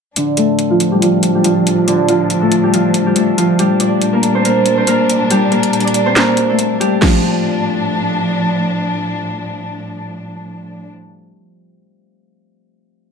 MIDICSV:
0, 0, Header, 1, 4, 480
1, 0, Start_track
1, 0, Key_signature, -1, "minor"
1, 0, Tempo, 428571
1, 180, Time_signature, 4, 2, 24, 8
1, 14693, End_track
2, 0, Start_track
2, 0, Title_t, "Harp"
2, 0, Program_c, 0, 46
2, 186, Note_on_c, 0, 62, 80
2, 194, Note_on_c, 0, 50, 71
2, 421, Note_on_c, 0, 69, 83
2, 430, Note_on_c, 0, 57, 63
2, 788, Note_on_c, 0, 65, 82
2, 798, Note_on_c, 0, 53, 58
2, 1026, Note_on_c, 0, 67, 69
2, 1034, Note_on_c, 0, 55, 57
2, 1136, Note_off_c, 0, 53, 0
2, 1136, Note_off_c, 0, 65, 0
2, 1140, Note_on_c, 0, 65, 74
2, 1150, Note_on_c, 0, 53, 63
2, 1507, Note_off_c, 0, 55, 0
2, 1507, Note_off_c, 0, 67, 0
2, 1511, Note_on_c, 0, 67, 80
2, 1520, Note_on_c, 0, 55, 56
2, 1614, Note_off_c, 0, 53, 0
2, 1614, Note_off_c, 0, 65, 0
2, 1618, Note_on_c, 0, 65, 83
2, 1627, Note_on_c, 0, 53, 66
2, 2091, Note_off_c, 0, 62, 0
2, 2092, Note_off_c, 0, 50, 0
2, 2096, Note_on_c, 0, 62, 90
2, 2106, Note_on_c, 0, 50, 71
2, 2156, Note_off_c, 0, 53, 0
2, 2157, Note_off_c, 0, 55, 0
2, 2335, Note_off_c, 0, 65, 0
2, 2339, Note_on_c, 0, 65, 81
2, 2349, Note_on_c, 0, 53, 59
2, 2701, Note_off_c, 0, 69, 0
2, 2706, Note_on_c, 0, 69, 77
2, 2710, Note_off_c, 0, 57, 0
2, 2715, Note_on_c, 0, 57, 58
2, 2947, Note_off_c, 0, 67, 0
2, 2952, Note_on_c, 0, 67, 65
2, 2961, Note_on_c, 0, 55, 60
2, 3060, Note_off_c, 0, 53, 0
2, 3061, Note_off_c, 0, 65, 0
2, 3065, Note_on_c, 0, 65, 90
2, 3074, Note_on_c, 0, 53, 68
2, 3427, Note_off_c, 0, 55, 0
2, 3427, Note_off_c, 0, 67, 0
2, 3432, Note_on_c, 0, 67, 72
2, 3440, Note_on_c, 0, 55, 52
2, 3536, Note_off_c, 0, 69, 0
2, 3540, Note_on_c, 0, 69, 79
2, 3544, Note_off_c, 0, 57, 0
2, 3549, Note_on_c, 0, 57, 60
2, 3776, Note_off_c, 0, 65, 0
2, 3777, Note_off_c, 0, 53, 0
2, 3780, Note_on_c, 0, 65, 72
2, 3790, Note_on_c, 0, 53, 63
2, 4018, Note_off_c, 0, 55, 0
2, 4018, Note_off_c, 0, 67, 0
2, 4023, Note_on_c, 0, 67, 84
2, 4032, Note_on_c, 0, 55, 62
2, 4077, Note_off_c, 0, 50, 0
2, 4077, Note_off_c, 0, 53, 0
2, 4260, Note_on_c, 0, 74, 78
2, 4264, Note_off_c, 0, 62, 0
2, 4269, Note_on_c, 0, 62, 59
2, 4625, Note_on_c, 0, 70, 73
2, 4634, Note_on_c, 0, 58, 55
2, 4692, Note_off_c, 0, 57, 0
2, 4692, Note_off_c, 0, 69, 0
2, 4870, Note_on_c, 0, 72, 75
2, 4879, Note_on_c, 0, 60, 57
2, 4977, Note_off_c, 0, 70, 0
2, 4982, Note_on_c, 0, 70, 83
2, 4986, Note_off_c, 0, 58, 0
2, 4991, Note_on_c, 0, 58, 63
2, 5344, Note_off_c, 0, 72, 0
2, 5348, Note_on_c, 0, 72, 73
2, 5352, Note_off_c, 0, 60, 0
2, 5356, Note_on_c, 0, 60, 58
2, 5457, Note_off_c, 0, 70, 0
2, 5462, Note_on_c, 0, 70, 87
2, 5466, Note_off_c, 0, 58, 0
2, 5470, Note_on_c, 0, 58, 68
2, 5939, Note_off_c, 0, 55, 0
2, 5939, Note_off_c, 0, 67, 0
2, 5943, Note_on_c, 0, 67, 87
2, 5953, Note_on_c, 0, 55, 72
2, 6176, Note_off_c, 0, 70, 0
2, 6181, Note_on_c, 0, 70, 74
2, 6184, Note_off_c, 0, 58, 0
2, 6189, Note_on_c, 0, 58, 60
2, 6328, Note_off_c, 0, 74, 0
2, 6550, Note_on_c, 0, 74, 73
2, 6555, Note_off_c, 0, 62, 0
2, 6560, Note_on_c, 0, 62, 59
2, 6606, Note_off_c, 0, 65, 0
2, 6783, Note_off_c, 0, 72, 0
2, 6787, Note_on_c, 0, 72, 78
2, 6792, Note_off_c, 0, 60, 0
2, 6797, Note_on_c, 0, 60, 63
2, 6898, Note_off_c, 0, 70, 0
2, 6902, Note_on_c, 0, 70, 78
2, 6907, Note_off_c, 0, 58, 0
2, 6911, Note_on_c, 0, 58, 66
2, 7274, Note_on_c, 0, 69, 69
2, 7283, Note_on_c, 0, 57, 50
2, 7341, Note_off_c, 0, 58, 0
2, 7341, Note_off_c, 0, 70, 0
2, 7614, Note_off_c, 0, 55, 0
2, 7614, Note_off_c, 0, 67, 0
2, 7618, Note_on_c, 0, 67, 81
2, 7627, Note_on_c, 0, 55, 64
2, 7860, Note_on_c, 0, 53, 82
2, 7917, Note_off_c, 0, 55, 0
2, 8618, Note_off_c, 0, 74, 0
2, 9004, Note_off_c, 0, 72, 0
2, 9695, Note_off_c, 0, 62, 0
2, 9734, Note_off_c, 0, 69, 0
2, 10157, Note_off_c, 0, 60, 0
2, 10254, Note_off_c, 0, 67, 0
2, 11011, Note_off_c, 0, 57, 0
2, 12143, Note_off_c, 0, 53, 0
2, 14693, End_track
3, 0, Start_track
3, 0, Title_t, "String section"
3, 0, Program_c, 1, 48
3, 183, Note_on_c, 1, 53, 76
3, 183, Note_on_c, 1, 62, 86
3, 184, Note_on_c, 1, 45, 81
3, 3983, Note_off_c, 1, 53, 0
3, 3983, Note_off_c, 1, 62, 0
3, 3984, Note_off_c, 1, 45, 0
3, 4020, Note_on_c, 1, 55, 75
3, 4020, Note_on_c, 1, 62, 91
3, 4021, Note_on_c, 1, 46, 79
3, 7822, Note_off_c, 1, 55, 0
3, 7822, Note_off_c, 1, 62, 0
3, 7823, Note_off_c, 1, 46, 0
3, 7862, Note_on_c, 1, 45, 82
3, 7862, Note_on_c, 1, 62, 92
3, 7863, Note_on_c, 1, 53, 76
3, 12177, Note_off_c, 1, 45, 0
3, 12177, Note_off_c, 1, 62, 0
3, 12178, Note_off_c, 1, 53, 0
3, 14693, End_track
4, 0, Start_track
4, 0, Title_t, "Drums"
4, 182, Note_on_c, 9, 42, 76
4, 294, Note_off_c, 9, 42, 0
4, 416, Note_on_c, 9, 42, 73
4, 528, Note_off_c, 9, 42, 0
4, 657, Note_on_c, 9, 42, 67
4, 769, Note_off_c, 9, 42, 0
4, 898, Note_on_c, 9, 42, 71
4, 1010, Note_off_c, 9, 42, 0
4, 1145, Note_on_c, 9, 42, 77
4, 1257, Note_off_c, 9, 42, 0
4, 1375, Note_on_c, 9, 42, 74
4, 1487, Note_off_c, 9, 42, 0
4, 1617, Note_on_c, 9, 42, 83
4, 1729, Note_off_c, 9, 42, 0
4, 1867, Note_on_c, 9, 42, 81
4, 1979, Note_off_c, 9, 42, 0
4, 2103, Note_on_c, 9, 42, 77
4, 2215, Note_off_c, 9, 42, 0
4, 2335, Note_on_c, 9, 42, 70
4, 2447, Note_off_c, 9, 42, 0
4, 2576, Note_on_c, 9, 42, 70
4, 2688, Note_off_c, 9, 42, 0
4, 2818, Note_on_c, 9, 42, 78
4, 2930, Note_off_c, 9, 42, 0
4, 3065, Note_on_c, 9, 42, 75
4, 3177, Note_off_c, 9, 42, 0
4, 3295, Note_on_c, 9, 42, 80
4, 3407, Note_off_c, 9, 42, 0
4, 3537, Note_on_c, 9, 42, 81
4, 3649, Note_off_c, 9, 42, 0
4, 3787, Note_on_c, 9, 42, 78
4, 3899, Note_off_c, 9, 42, 0
4, 4022, Note_on_c, 9, 42, 77
4, 4134, Note_off_c, 9, 42, 0
4, 4255, Note_on_c, 9, 42, 73
4, 4367, Note_off_c, 9, 42, 0
4, 4497, Note_on_c, 9, 42, 68
4, 4609, Note_off_c, 9, 42, 0
4, 4737, Note_on_c, 9, 42, 71
4, 4849, Note_off_c, 9, 42, 0
4, 4985, Note_on_c, 9, 42, 74
4, 5097, Note_off_c, 9, 42, 0
4, 5215, Note_on_c, 9, 42, 76
4, 5327, Note_off_c, 9, 42, 0
4, 5457, Note_on_c, 9, 42, 81
4, 5569, Note_off_c, 9, 42, 0
4, 5707, Note_on_c, 9, 42, 83
4, 5819, Note_off_c, 9, 42, 0
4, 5942, Note_on_c, 9, 42, 79
4, 6054, Note_off_c, 9, 42, 0
4, 6181, Note_on_c, 9, 42, 44
4, 6293, Note_off_c, 9, 42, 0
4, 6308, Note_on_c, 9, 42, 75
4, 6420, Note_off_c, 9, 42, 0
4, 6421, Note_on_c, 9, 42, 57
4, 6501, Note_off_c, 9, 42, 0
4, 6501, Note_on_c, 9, 42, 60
4, 6580, Note_off_c, 9, 42, 0
4, 6580, Note_on_c, 9, 42, 55
4, 6657, Note_off_c, 9, 42, 0
4, 6657, Note_on_c, 9, 42, 77
4, 6769, Note_off_c, 9, 42, 0
4, 6900, Note_on_c, 9, 38, 107
4, 6905, Note_on_c, 9, 42, 76
4, 6907, Note_on_c, 9, 39, 86
4, 7012, Note_off_c, 9, 38, 0
4, 7017, Note_off_c, 9, 42, 0
4, 7019, Note_off_c, 9, 39, 0
4, 7135, Note_on_c, 9, 42, 81
4, 7247, Note_off_c, 9, 42, 0
4, 7377, Note_on_c, 9, 42, 80
4, 7489, Note_off_c, 9, 42, 0
4, 7628, Note_on_c, 9, 42, 76
4, 7740, Note_off_c, 9, 42, 0
4, 7861, Note_on_c, 9, 36, 100
4, 7862, Note_on_c, 9, 38, 102
4, 7862, Note_on_c, 9, 49, 84
4, 7973, Note_off_c, 9, 36, 0
4, 7974, Note_off_c, 9, 38, 0
4, 7974, Note_off_c, 9, 49, 0
4, 14693, End_track
0, 0, End_of_file